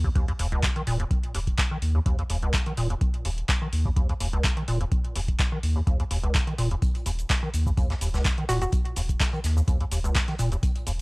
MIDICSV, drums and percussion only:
0, 0, Header, 1, 2, 480
1, 0, Start_track
1, 0, Tempo, 476190
1, 1117, Time_signature, 4, 2, 24, 8
1, 11102, End_track
2, 0, Start_track
2, 0, Title_t, "Drums"
2, 44, Note_on_c, 9, 36, 57
2, 144, Note_off_c, 9, 36, 0
2, 155, Note_on_c, 9, 36, 116
2, 157, Note_on_c, 9, 42, 75
2, 256, Note_off_c, 9, 36, 0
2, 257, Note_off_c, 9, 42, 0
2, 285, Note_on_c, 9, 42, 35
2, 385, Note_off_c, 9, 42, 0
2, 396, Note_on_c, 9, 46, 104
2, 497, Note_off_c, 9, 46, 0
2, 524, Note_on_c, 9, 42, 35
2, 625, Note_off_c, 9, 42, 0
2, 635, Note_on_c, 9, 36, 115
2, 637, Note_on_c, 9, 42, 81
2, 638, Note_on_c, 9, 39, 118
2, 736, Note_off_c, 9, 36, 0
2, 738, Note_off_c, 9, 42, 0
2, 739, Note_off_c, 9, 39, 0
2, 765, Note_on_c, 9, 42, 38
2, 866, Note_off_c, 9, 42, 0
2, 876, Note_on_c, 9, 46, 82
2, 977, Note_off_c, 9, 46, 0
2, 1005, Note_on_c, 9, 42, 51
2, 1106, Note_off_c, 9, 42, 0
2, 1116, Note_on_c, 9, 36, 112
2, 1116, Note_on_c, 9, 42, 76
2, 1216, Note_off_c, 9, 36, 0
2, 1217, Note_off_c, 9, 42, 0
2, 1244, Note_on_c, 9, 42, 36
2, 1345, Note_off_c, 9, 42, 0
2, 1356, Note_on_c, 9, 46, 105
2, 1457, Note_off_c, 9, 46, 0
2, 1484, Note_on_c, 9, 36, 61
2, 1484, Note_on_c, 9, 42, 50
2, 1585, Note_off_c, 9, 36, 0
2, 1585, Note_off_c, 9, 42, 0
2, 1596, Note_on_c, 9, 36, 115
2, 1596, Note_on_c, 9, 42, 73
2, 1597, Note_on_c, 9, 39, 117
2, 1696, Note_off_c, 9, 36, 0
2, 1696, Note_off_c, 9, 42, 0
2, 1697, Note_off_c, 9, 39, 0
2, 1836, Note_on_c, 9, 46, 91
2, 1936, Note_off_c, 9, 46, 0
2, 2076, Note_on_c, 9, 36, 115
2, 2076, Note_on_c, 9, 42, 79
2, 2177, Note_off_c, 9, 36, 0
2, 2177, Note_off_c, 9, 42, 0
2, 2205, Note_on_c, 9, 42, 34
2, 2306, Note_off_c, 9, 42, 0
2, 2316, Note_on_c, 9, 46, 108
2, 2416, Note_off_c, 9, 46, 0
2, 2444, Note_on_c, 9, 42, 34
2, 2545, Note_off_c, 9, 42, 0
2, 2556, Note_on_c, 9, 36, 119
2, 2556, Note_on_c, 9, 42, 78
2, 2557, Note_on_c, 9, 39, 116
2, 2657, Note_off_c, 9, 36, 0
2, 2657, Note_off_c, 9, 42, 0
2, 2658, Note_off_c, 9, 39, 0
2, 2684, Note_on_c, 9, 42, 36
2, 2785, Note_off_c, 9, 42, 0
2, 2795, Note_on_c, 9, 46, 84
2, 2896, Note_off_c, 9, 46, 0
2, 2925, Note_on_c, 9, 42, 49
2, 3026, Note_off_c, 9, 42, 0
2, 3036, Note_on_c, 9, 36, 121
2, 3036, Note_on_c, 9, 42, 75
2, 3137, Note_off_c, 9, 36, 0
2, 3137, Note_off_c, 9, 42, 0
2, 3164, Note_on_c, 9, 42, 33
2, 3265, Note_off_c, 9, 42, 0
2, 3276, Note_on_c, 9, 46, 104
2, 3377, Note_off_c, 9, 46, 0
2, 3406, Note_on_c, 9, 42, 48
2, 3506, Note_off_c, 9, 42, 0
2, 3516, Note_on_c, 9, 36, 117
2, 3517, Note_on_c, 9, 42, 71
2, 3518, Note_on_c, 9, 39, 116
2, 3617, Note_off_c, 9, 36, 0
2, 3618, Note_off_c, 9, 42, 0
2, 3619, Note_off_c, 9, 39, 0
2, 3757, Note_on_c, 9, 46, 91
2, 3858, Note_off_c, 9, 46, 0
2, 3884, Note_on_c, 9, 36, 63
2, 3985, Note_off_c, 9, 36, 0
2, 3996, Note_on_c, 9, 36, 121
2, 3997, Note_on_c, 9, 42, 72
2, 4097, Note_off_c, 9, 36, 0
2, 4098, Note_off_c, 9, 42, 0
2, 4126, Note_on_c, 9, 42, 34
2, 4227, Note_off_c, 9, 42, 0
2, 4238, Note_on_c, 9, 46, 107
2, 4338, Note_off_c, 9, 46, 0
2, 4366, Note_on_c, 9, 42, 33
2, 4467, Note_off_c, 9, 42, 0
2, 4476, Note_on_c, 9, 36, 126
2, 4477, Note_on_c, 9, 42, 74
2, 4478, Note_on_c, 9, 39, 118
2, 4577, Note_off_c, 9, 36, 0
2, 4578, Note_off_c, 9, 42, 0
2, 4579, Note_off_c, 9, 39, 0
2, 4606, Note_on_c, 9, 42, 35
2, 4707, Note_off_c, 9, 42, 0
2, 4716, Note_on_c, 9, 46, 92
2, 4817, Note_off_c, 9, 46, 0
2, 4845, Note_on_c, 9, 42, 47
2, 4946, Note_off_c, 9, 42, 0
2, 4956, Note_on_c, 9, 36, 117
2, 4956, Note_on_c, 9, 42, 74
2, 5057, Note_off_c, 9, 36, 0
2, 5057, Note_off_c, 9, 42, 0
2, 5086, Note_on_c, 9, 42, 33
2, 5187, Note_off_c, 9, 42, 0
2, 5197, Note_on_c, 9, 46, 107
2, 5298, Note_off_c, 9, 46, 0
2, 5324, Note_on_c, 9, 36, 61
2, 5325, Note_on_c, 9, 42, 45
2, 5425, Note_off_c, 9, 36, 0
2, 5426, Note_off_c, 9, 42, 0
2, 5436, Note_on_c, 9, 36, 118
2, 5437, Note_on_c, 9, 42, 73
2, 5438, Note_on_c, 9, 39, 106
2, 5537, Note_off_c, 9, 36, 0
2, 5537, Note_off_c, 9, 42, 0
2, 5538, Note_off_c, 9, 39, 0
2, 5677, Note_on_c, 9, 46, 92
2, 5778, Note_off_c, 9, 46, 0
2, 5916, Note_on_c, 9, 36, 114
2, 5918, Note_on_c, 9, 42, 72
2, 6017, Note_off_c, 9, 36, 0
2, 6018, Note_off_c, 9, 42, 0
2, 6045, Note_on_c, 9, 42, 34
2, 6146, Note_off_c, 9, 42, 0
2, 6156, Note_on_c, 9, 46, 106
2, 6257, Note_off_c, 9, 46, 0
2, 6284, Note_on_c, 9, 42, 34
2, 6385, Note_off_c, 9, 42, 0
2, 6396, Note_on_c, 9, 42, 74
2, 6397, Note_on_c, 9, 36, 122
2, 6397, Note_on_c, 9, 39, 115
2, 6497, Note_off_c, 9, 36, 0
2, 6497, Note_off_c, 9, 42, 0
2, 6498, Note_off_c, 9, 39, 0
2, 6525, Note_on_c, 9, 42, 34
2, 6625, Note_off_c, 9, 42, 0
2, 6637, Note_on_c, 9, 46, 90
2, 6737, Note_off_c, 9, 46, 0
2, 6765, Note_on_c, 9, 42, 47
2, 6866, Note_off_c, 9, 42, 0
2, 6875, Note_on_c, 9, 42, 82
2, 6877, Note_off_c, 9, 42, 0
2, 6877, Note_on_c, 9, 36, 116
2, 6877, Note_on_c, 9, 42, 73
2, 6883, Note_on_c, 9, 69, 33
2, 6977, Note_off_c, 9, 36, 0
2, 6977, Note_off_c, 9, 42, 0
2, 6984, Note_off_c, 9, 69, 0
2, 7005, Note_on_c, 9, 42, 33
2, 7012, Note_off_c, 9, 42, 0
2, 7012, Note_on_c, 9, 42, 45
2, 7112, Note_off_c, 9, 42, 0
2, 7116, Note_on_c, 9, 46, 104
2, 7120, Note_on_c, 9, 42, 67
2, 7122, Note_on_c, 9, 69, 75
2, 7217, Note_off_c, 9, 46, 0
2, 7221, Note_off_c, 9, 42, 0
2, 7223, Note_off_c, 9, 69, 0
2, 7245, Note_on_c, 9, 42, 48
2, 7251, Note_on_c, 9, 69, 43
2, 7346, Note_off_c, 9, 42, 0
2, 7352, Note_off_c, 9, 69, 0
2, 7357, Note_on_c, 9, 36, 112
2, 7358, Note_on_c, 9, 38, 114
2, 7358, Note_on_c, 9, 42, 73
2, 7359, Note_on_c, 9, 39, 108
2, 7360, Note_off_c, 9, 42, 0
2, 7360, Note_on_c, 9, 42, 87
2, 7364, Note_on_c, 9, 69, 31
2, 7457, Note_off_c, 9, 36, 0
2, 7458, Note_off_c, 9, 38, 0
2, 7459, Note_off_c, 9, 39, 0
2, 7460, Note_off_c, 9, 42, 0
2, 7465, Note_off_c, 9, 69, 0
2, 7596, Note_on_c, 9, 42, 63
2, 7597, Note_on_c, 9, 46, 87
2, 7603, Note_on_c, 9, 69, 76
2, 7697, Note_off_c, 9, 42, 0
2, 7698, Note_off_c, 9, 46, 0
2, 7704, Note_off_c, 9, 69, 0
2, 7725, Note_on_c, 9, 36, 59
2, 7731, Note_on_c, 9, 69, 44
2, 7826, Note_off_c, 9, 36, 0
2, 7832, Note_off_c, 9, 69, 0
2, 7836, Note_on_c, 9, 36, 110
2, 7837, Note_on_c, 9, 42, 74
2, 7839, Note_off_c, 9, 42, 0
2, 7839, Note_on_c, 9, 42, 80
2, 7843, Note_on_c, 9, 69, 31
2, 7937, Note_off_c, 9, 36, 0
2, 7939, Note_off_c, 9, 42, 0
2, 7944, Note_off_c, 9, 69, 0
2, 7964, Note_on_c, 9, 42, 34
2, 7965, Note_on_c, 9, 38, 39
2, 8065, Note_off_c, 9, 38, 0
2, 8065, Note_off_c, 9, 42, 0
2, 8077, Note_on_c, 9, 46, 102
2, 8081, Note_on_c, 9, 42, 61
2, 8083, Note_on_c, 9, 69, 79
2, 8178, Note_off_c, 9, 46, 0
2, 8182, Note_off_c, 9, 42, 0
2, 8184, Note_off_c, 9, 69, 0
2, 8205, Note_on_c, 9, 42, 35
2, 8208, Note_on_c, 9, 38, 56
2, 8211, Note_on_c, 9, 69, 42
2, 8306, Note_off_c, 9, 42, 0
2, 8309, Note_off_c, 9, 38, 0
2, 8312, Note_off_c, 9, 69, 0
2, 8316, Note_on_c, 9, 36, 121
2, 8318, Note_on_c, 9, 42, 77
2, 8319, Note_on_c, 9, 39, 112
2, 8322, Note_off_c, 9, 42, 0
2, 8322, Note_on_c, 9, 38, 106
2, 8322, Note_on_c, 9, 42, 84
2, 8324, Note_on_c, 9, 69, 34
2, 8417, Note_off_c, 9, 36, 0
2, 8420, Note_off_c, 9, 39, 0
2, 8422, Note_off_c, 9, 38, 0
2, 8423, Note_off_c, 9, 42, 0
2, 8425, Note_off_c, 9, 69, 0
2, 8446, Note_on_c, 9, 42, 34
2, 8547, Note_off_c, 9, 42, 0
2, 8557, Note_on_c, 9, 38, 51
2, 8557, Note_on_c, 9, 42, 71
2, 8557, Note_on_c, 9, 46, 87
2, 8563, Note_on_c, 9, 69, 72
2, 8657, Note_off_c, 9, 38, 0
2, 8657, Note_off_c, 9, 46, 0
2, 8658, Note_off_c, 9, 42, 0
2, 8664, Note_off_c, 9, 69, 0
2, 8685, Note_on_c, 9, 42, 49
2, 8691, Note_on_c, 9, 69, 43
2, 8786, Note_off_c, 9, 42, 0
2, 8792, Note_off_c, 9, 69, 0
2, 8792, Note_on_c, 9, 42, 81
2, 8796, Note_on_c, 9, 36, 109
2, 8797, Note_off_c, 9, 42, 0
2, 8797, Note_on_c, 9, 42, 79
2, 8803, Note_on_c, 9, 69, 35
2, 8897, Note_off_c, 9, 36, 0
2, 8898, Note_off_c, 9, 42, 0
2, 8904, Note_off_c, 9, 69, 0
2, 8925, Note_on_c, 9, 42, 36
2, 9026, Note_off_c, 9, 42, 0
2, 9032, Note_on_c, 9, 42, 70
2, 9036, Note_on_c, 9, 46, 102
2, 9042, Note_on_c, 9, 69, 80
2, 9133, Note_off_c, 9, 42, 0
2, 9137, Note_off_c, 9, 46, 0
2, 9143, Note_off_c, 9, 69, 0
2, 9164, Note_on_c, 9, 36, 57
2, 9165, Note_on_c, 9, 42, 52
2, 9171, Note_on_c, 9, 69, 45
2, 9265, Note_off_c, 9, 36, 0
2, 9266, Note_off_c, 9, 42, 0
2, 9272, Note_off_c, 9, 69, 0
2, 9275, Note_on_c, 9, 38, 101
2, 9276, Note_on_c, 9, 36, 105
2, 9277, Note_on_c, 9, 39, 107
2, 9277, Note_on_c, 9, 42, 71
2, 9283, Note_on_c, 9, 69, 33
2, 9284, Note_off_c, 9, 42, 0
2, 9284, Note_on_c, 9, 42, 78
2, 9376, Note_off_c, 9, 38, 0
2, 9377, Note_off_c, 9, 36, 0
2, 9378, Note_off_c, 9, 39, 0
2, 9383, Note_off_c, 9, 69, 0
2, 9385, Note_off_c, 9, 42, 0
2, 9406, Note_on_c, 9, 42, 44
2, 9507, Note_off_c, 9, 42, 0
2, 9514, Note_on_c, 9, 42, 67
2, 9515, Note_on_c, 9, 38, 52
2, 9516, Note_on_c, 9, 46, 87
2, 9523, Note_on_c, 9, 69, 80
2, 9614, Note_off_c, 9, 42, 0
2, 9616, Note_off_c, 9, 38, 0
2, 9617, Note_off_c, 9, 46, 0
2, 9623, Note_off_c, 9, 69, 0
2, 9651, Note_on_c, 9, 69, 46
2, 9752, Note_off_c, 9, 69, 0
2, 9754, Note_on_c, 9, 42, 83
2, 9755, Note_on_c, 9, 36, 112
2, 9756, Note_off_c, 9, 42, 0
2, 9756, Note_on_c, 9, 42, 75
2, 9762, Note_on_c, 9, 69, 34
2, 9856, Note_off_c, 9, 36, 0
2, 9857, Note_off_c, 9, 42, 0
2, 9863, Note_off_c, 9, 69, 0
2, 9884, Note_on_c, 9, 42, 34
2, 9985, Note_off_c, 9, 42, 0
2, 9996, Note_on_c, 9, 46, 103
2, 10001, Note_on_c, 9, 42, 70
2, 10002, Note_on_c, 9, 69, 80
2, 10096, Note_off_c, 9, 46, 0
2, 10102, Note_off_c, 9, 42, 0
2, 10103, Note_off_c, 9, 69, 0
2, 10124, Note_on_c, 9, 42, 35
2, 10130, Note_on_c, 9, 69, 45
2, 10225, Note_off_c, 9, 42, 0
2, 10229, Note_on_c, 9, 42, 81
2, 10231, Note_off_c, 9, 69, 0
2, 10235, Note_on_c, 9, 36, 112
2, 10236, Note_off_c, 9, 42, 0
2, 10236, Note_on_c, 9, 38, 114
2, 10236, Note_on_c, 9, 42, 75
2, 10237, Note_on_c, 9, 39, 114
2, 10242, Note_on_c, 9, 69, 34
2, 10336, Note_off_c, 9, 36, 0
2, 10336, Note_off_c, 9, 42, 0
2, 10337, Note_off_c, 9, 38, 0
2, 10337, Note_off_c, 9, 39, 0
2, 10343, Note_off_c, 9, 69, 0
2, 10359, Note_on_c, 9, 38, 43
2, 10363, Note_on_c, 9, 42, 37
2, 10460, Note_off_c, 9, 38, 0
2, 10464, Note_off_c, 9, 42, 0
2, 10468, Note_on_c, 9, 42, 73
2, 10475, Note_on_c, 9, 46, 83
2, 10481, Note_on_c, 9, 69, 78
2, 10569, Note_off_c, 9, 42, 0
2, 10576, Note_off_c, 9, 46, 0
2, 10582, Note_off_c, 9, 69, 0
2, 10603, Note_on_c, 9, 42, 51
2, 10609, Note_on_c, 9, 69, 45
2, 10704, Note_off_c, 9, 42, 0
2, 10710, Note_off_c, 9, 69, 0
2, 10715, Note_on_c, 9, 36, 106
2, 10715, Note_on_c, 9, 42, 78
2, 10721, Note_on_c, 9, 69, 35
2, 10815, Note_off_c, 9, 42, 0
2, 10816, Note_off_c, 9, 36, 0
2, 10822, Note_off_c, 9, 69, 0
2, 10842, Note_on_c, 9, 42, 46
2, 10943, Note_off_c, 9, 42, 0
2, 10953, Note_on_c, 9, 42, 64
2, 10953, Note_on_c, 9, 46, 98
2, 10960, Note_on_c, 9, 69, 78
2, 11054, Note_off_c, 9, 42, 0
2, 11054, Note_off_c, 9, 46, 0
2, 11060, Note_off_c, 9, 69, 0
2, 11102, End_track
0, 0, End_of_file